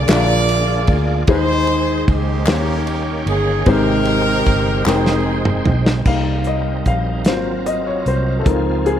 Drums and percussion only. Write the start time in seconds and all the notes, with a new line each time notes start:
0.08 snare, clap, ride
0.49 ride
0.87 kick, ride
1.27 kick, ride
1.67 ride
2.08 kick, ride
2.46 snare, clap, ride
2.87 ride
3.27 ride
3.66 kick, ride
4.05 ride
4.46 kick, ride
4.86 snare, clap
5.06 snare
5.45 mid tom
5.65 floor tom
5.86 snare
6.05 kick, crash
6.44 closed hi-hat
6.86 kick, closed hi-hat
7.25 snare, closed hi-hat
7.66 closed hi-hat
8.06 closed hi-hat
8.46 kick, closed hi-hat
8.86 closed hi-hat